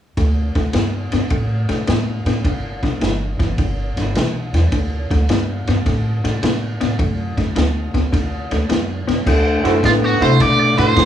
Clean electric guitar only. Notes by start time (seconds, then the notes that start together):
0.17 D3 A3
0.56 D3 A3
0.73 D3 B3
1.13 D3 B3
1.31 D3 A3
1.69 D3 A3
1.87 D3 B3
2.26 D3 B3
2.45 G2 D3
2.83 G2 D3
3.02 G2 E3
3.39 G2 E3
3.59 G2 D3
3.98 G2 D3
4.16 G2 E3
4.55 G2 E3
4.72 D3 A3
5.11 D3 A3
5.30 D3 B3
5.68 D3 B3
5.86 D3 A3
6.24 D3 A3
6.43 D3 B3
6.81 D3 B3
6.99 D3 A3
7.38 D3 A3
7.56 D3 B3
7.94 D3 B3
8.13 D3 A3
8.52 D3 A3
8.69 D3 B3
9.07 D3 B3
9.27 D3 A3
9.65 D3 A3
9.83 D3 B3
10.21 D3 A3
10.40 D3 A3
10.77 D3 A3
10.96 D3 B3